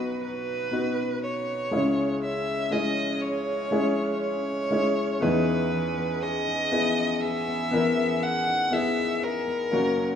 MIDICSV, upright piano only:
0, 0, Header, 1, 2, 480
1, 0, Start_track
1, 0, Tempo, 1000000
1, 827, Time_signature, 4, 2, 24, 8
1, 4874, End_track
2, 0, Start_track
2, 0, Title_t, "Upright piano"
2, 0, Program_c, 0, 0
2, 0, Control_c, 0, 64, 127
2, 0, Note_on_c, 0, 35, 51
2, 0, Note_on_c, 0, 47, 45
2, 0, Note_on_c, 0, 59, 61
2, 0, Note_on_c, 0, 63, 59
2, 0, Note_on_c, 0, 66, 58
2, 0, Note_on_c, 0, 71, 65
2, 319, Note_off_c, 0, 59, 0
2, 321, Note_off_c, 0, 63, 0
2, 322, Note_off_c, 0, 66, 0
2, 324, Note_off_c, 0, 71, 0
2, 342, Note_on_c, 0, 59, 58
2, 345, Note_on_c, 0, 63, 50
2, 349, Note_on_c, 0, 66, 52
2, 351, Note_on_c, 0, 71, 62
2, 800, Note_off_c, 0, 59, 0
2, 802, Note_off_c, 0, 63, 0
2, 804, Note_off_c, 0, 66, 0
2, 805, Note_off_c, 0, 71, 0
2, 808, Note_off_c, 0, 35, 0
2, 808, Note_off_c, 0, 47, 0
2, 822, Note_on_c, 0, 56, 58
2, 823, Note_on_c, 0, 61, 51
2, 825, Note_on_c, 0, 37, 51
2, 826, Note_on_c, 0, 49, 54
2, 829, Note_on_c, 0, 64, 55
2, 830, Note_on_c, 0, 68, 66
2, 833, Control_c, 0, 64, 0
2, 913, Control_c, 0, 64, 127
2, 1280, Note_off_c, 0, 56, 0
2, 1281, Note_off_c, 0, 61, 0
2, 1284, Note_off_c, 0, 64, 0
2, 1284, Note_off_c, 0, 68, 0
2, 1299, Note_on_c, 0, 56, 58
2, 1303, Note_on_c, 0, 61, 54
2, 1306, Note_on_c, 0, 64, 55
2, 1308, Note_on_c, 0, 68, 65
2, 1759, Note_off_c, 0, 56, 0
2, 1761, Note_off_c, 0, 61, 0
2, 1762, Note_off_c, 0, 64, 0
2, 1763, Note_off_c, 0, 68, 0
2, 1780, Note_on_c, 0, 56, 67
2, 1784, Note_on_c, 0, 61, 57
2, 1786, Note_on_c, 0, 64, 63
2, 1788, Note_on_c, 0, 68, 72
2, 2239, Note_off_c, 0, 56, 0
2, 2241, Note_off_c, 0, 61, 0
2, 2242, Note_off_c, 0, 64, 0
2, 2243, Note_off_c, 0, 68, 0
2, 2259, Note_on_c, 0, 56, 57
2, 2262, Note_on_c, 0, 61, 52
2, 2265, Note_on_c, 0, 64, 54
2, 2269, Note_on_c, 0, 68, 65
2, 2487, Note_off_c, 0, 37, 0
2, 2487, Note_off_c, 0, 49, 0
2, 2498, Note_off_c, 0, 64, 0
2, 2499, Note_on_c, 0, 59, 67
2, 2501, Note_off_c, 0, 68, 0
2, 2503, Note_off_c, 0, 56, 0
2, 2504, Note_off_c, 0, 61, 0
2, 2504, Note_on_c, 0, 63, 65
2, 2505, Note_on_c, 0, 52, 56
2, 2505, Note_on_c, 0, 64, 57
2, 2506, Note_on_c, 0, 40, 55
2, 2508, Note_on_c, 0, 68, 76
2, 2512, Control_c, 0, 64, 0
2, 2607, Control_c, 0, 64, 127
2, 3187, Note_off_c, 0, 59, 0
2, 3189, Note_off_c, 0, 63, 0
2, 3190, Note_off_c, 0, 64, 0
2, 3191, Note_off_c, 0, 68, 0
2, 3222, Note_on_c, 0, 59, 64
2, 3228, Note_on_c, 0, 64, 54
2, 3231, Note_on_c, 0, 68, 60
2, 3680, Note_off_c, 0, 59, 0
2, 3683, Note_off_c, 0, 64, 0
2, 3685, Note_off_c, 0, 68, 0
2, 3702, Note_on_c, 0, 59, 69
2, 3710, Note_on_c, 0, 64, 58
2, 3712, Note_on_c, 0, 70, 77
2, 4160, Note_off_c, 0, 59, 0
2, 4164, Note_off_c, 0, 64, 0
2, 4165, Note_off_c, 0, 70, 0
2, 4179, Note_on_c, 0, 59, 57
2, 4186, Note_on_c, 0, 64, 54
2, 4190, Note_on_c, 0, 68, 64
2, 4406, Note_off_c, 0, 52, 0
2, 4407, Note_off_c, 0, 40, 0
2, 4639, Note_off_c, 0, 59, 0
2, 4642, Note_off_c, 0, 64, 0
2, 4644, Note_off_c, 0, 68, 0
2, 4663, Note_on_c, 0, 58, 63
2, 4665, Note_on_c, 0, 61, 54
2, 4667, Note_on_c, 0, 42, 52
2, 4668, Note_on_c, 0, 30, 52
2, 4670, Note_on_c, 0, 66, 54
2, 4672, Note_on_c, 0, 70, 68
2, 4673, Control_c, 0, 64, 0
2, 4764, Control_c, 0, 64, 127
2, 4874, Note_off_c, 0, 30, 0
2, 4874, Note_off_c, 0, 42, 0
2, 4874, Note_off_c, 0, 58, 0
2, 4874, Note_off_c, 0, 61, 0
2, 4874, Note_off_c, 0, 66, 0
2, 4874, Note_off_c, 0, 70, 0
2, 4874, End_track
0, 0, End_of_file